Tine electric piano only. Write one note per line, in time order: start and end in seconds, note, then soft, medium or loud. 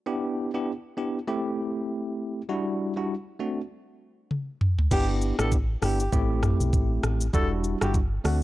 0.06 0.50 B3 medium
0.06 0.50 D4 medium
0.06 0.50 E4 medium
0.06 0.50 G4 medium
0.54 0.71 B3 medium
0.54 0.71 D4 medium
0.54 0.71 E4 medium
0.54 0.71 G4 medium
0.97 1.18 B3 medium
0.97 1.18 D4 medium
0.97 1.18 E4 medium
0.97 1.18 G4 medium
1.27 2.41 A3 medium
1.27 2.41 C4 medium
1.27 2.41 E4 medium
1.27 2.41 G4 medium
2.49 2.93 G3 medium
2.49 2.93 D4 medium
2.49 2.93 E4 medium
2.49 2.93 F#4 medium
2.96 3.13 G3 medium
2.96 3.14 D4 medium
2.96 3.14 E4 medium
2.96 3.14 F#4 medium
3.39 3.60 A3 medium
3.39 3.60 C4 medium
3.39 3.60 D4 medium
3.39 3.60 F#4 medium
4.91 5.35 B3 medium
4.91 5.35 D4 medium
4.91 5.35 E4 medium
4.91 5.35 G4 loud
5.39 5.56 B3 medium
5.39 5.56 D4 medium
5.39 5.56 E4 medium
5.39 5.56 G4 medium
5.82 6.03 B3 medium
5.82 6.03 D4 medium
5.82 6.03 E4 medium
5.82 6.03 G4 medium
6.12 7.25 A3 loud
6.12 7.26 C4 medium
6.12 7.26 E4 medium
6.12 7.26 G4 loud
7.33 7.77 G3 medium
7.33 7.77 D4 medium
7.33 7.77 E4 medium
7.33 7.78 F#4 loud
7.81 7.98 G3 medium
7.81 7.98 D4 medium
7.81 7.98 E4 medium
7.81 7.99 F#4 medium
8.24 8.43 A3 medium
8.24 8.43 C4 medium
8.24 8.43 D4 medium
8.24 8.43 F#4 medium